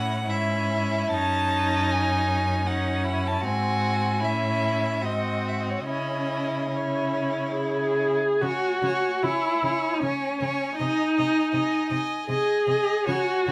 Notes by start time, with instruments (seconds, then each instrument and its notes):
Already playing: cello A2, viola C#4, violin E4 F#5
0.25 cello G#2, viola C#4, violin E4
0.30 violin E5
1.12 cello F#2, viola C#4, violin D#4 A5
1.91 violin G#5
2.66 viola C#4, violin D#4 F#5
3.04 violin E4
3.27 violin A5
3.41 cello G#2, viola C4, violin F#4
3.47 violin G#5
4.20 cello A2, viola C#4, violin E4
4.25 violin E5
5.01 cello G#2, viola C4, violin F#4 D#5
5.48 violin E5
5.60 violin D#5
5.70 violin C#5
5.81 violin D#5
5.87 cello C#3, viola C#4, violin E4 D#5
6.71 viola C#4, violin E4
6.77 violin C#5
7.56 viola G#4
8.42 cello C#3, viola F#4, violin C#5 G#5
8.82 cello C#3, violin C#5 G#5
9.23 cello C#3, viola E4, violin C#5 G#5
9.63 cello C#3, violin C#5 G#5
9.94 viola D#4
10.00 cello C#3, viola C#4, violin C#5 G#5
10.40 cello C#3, violin C#5 G#5
10.77 cello C3, viola D#4, violin D#5 G#5
11.17 cello C3, violin D#5 G#5
11.52 cello C3, violin D#5 G#5
11.89 cello C3, violin D#5 G#5
12.28 cello C3, viola G#4, violin D#5 G#5
12.67 cello C3, violin D#5 G#5
13.06 cello C#3, viola F#4, violin C#5 G#5
13.47 cello C#3, violin C#5 G#5